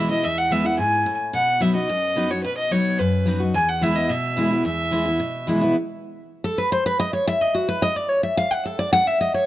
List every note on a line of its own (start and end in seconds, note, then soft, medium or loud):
0.00 0.21 B2 medium
0.09 0.24 B3 soft
0.09 0.23 E4 medium
0.09 0.26 D#5 medium
0.24 0.76 E2 medium
0.24 0.39 E5 loud
0.38 0.53 F#5 loud
0.50 0.64 E3 medium
0.50 0.64 G#3 medium
0.50 0.65 B3 medium
0.50 0.63 E4 loud
0.50 0.67 E5 medium
0.64 0.79 B3 medium
0.64 0.78 E4 medium
0.64 0.78 F#5 loud
0.78 1.05 G#2 loud
0.78 1.17 G#5 medium
1.06 1.32 A2 medium
1.33 1.86 B2 medium
1.33 1.63 F#5 loud
1.60 1.74 F#3 medium
1.60 1.75 B3 medium
1.60 1.75 D#4 medium
1.60 1.74 F#4 loud
1.60 1.74 E5 loud
1.75 1.89 D#4 soft
1.75 1.88 F#4 medium
1.75 2.32 D#5 loud
1.89 2.42 F#2 loud
2.16 2.29 F#3 medium
2.16 2.30 B3 loud
2.16 2.30 D#4 loud
2.16 2.29 F#4 medium
2.30 2.45 D#4 soft
2.30 2.43 F#4 medium
2.30 2.43 C#5 medium
2.44 2.97 B2 medium
2.44 2.57 B4 loud
2.57 2.73 D#5 loud
2.71 2.98 F#3 medium
2.71 2.98 B3 medium
2.71 2.98 D#4 loud
2.71 2.99 F#4 medium
2.71 3.01 C#5 medium
2.99 3.52 F#2 loud
2.99 3.41 B4 medium
3.26 3.40 F#3 loud
3.26 3.40 B3 medium
3.26 3.40 D#4 medium
3.26 3.39 F#4 loud
3.40 3.55 D#4 medium
3.40 3.53 F#4 medium
3.54 4.07 E2 loud
3.54 3.70 G#5 loud
3.69 3.84 F#5 loud
3.81 3.95 E3 medium
3.81 3.95 G#3 medium
3.81 3.96 B3 loud
3.81 3.94 E4 loud
3.81 3.97 E5 loud
3.96 4.10 B3 medium
3.96 4.09 E4 medium
3.96 4.11 D#5 medium
4.10 4.62 B2 loud
4.10 4.65 E5 medium
4.37 4.50 E3 loud
4.37 4.51 G#3 medium
4.37 4.51 B3 medium
4.37 4.49 E4 loud
4.51 4.65 B3 medium
4.51 4.64 E4 medium
4.65 5.17 E2 medium
4.65 5.44 E5 loud
4.91 5.05 E3 medium
4.91 5.06 G#3 loud
4.91 5.06 B3 medium
4.91 5.04 E4 medium
5.05 5.20 B3 medium
5.05 5.19 E4 medium
5.20 5.72 B2 medium
5.47 5.61 E3 medium
5.47 5.61 G#3 medium
5.47 5.61 B3 medium
5.47 5.60 E4 loud
5.61 5.76 B3 medium
5.61 5.75 E4 medium
6.44 6.58 A4 medium
6.58 6.72 B4 medium
6.72 6.85 C5 loud
6.86 6.99 B4 medium
7.00 7.13 D#5 loud
7.13 7.27 C#5 medium
7.27 7.41 E5 loud
7.41 7.54 D#5 medium
7.55 7.68 F#4 soft
7.68 7.82 B4 medium
7.82 7.96 D#5 loud
7.96 8.09 D5 medium
8.09 8.23 C#5 loud
8.23 8.37 E5 medium
8.37 8.51 F5 loud
8.51 8.65 F#5 loud
8.65 8.79 A4 medium
8.79 8.92 D5 medium
8.93 9.07 F#5 loud
9.07 9.20 E5 medium
9.21 9.34 D#5 medium
9.34 9.46 C#5 medium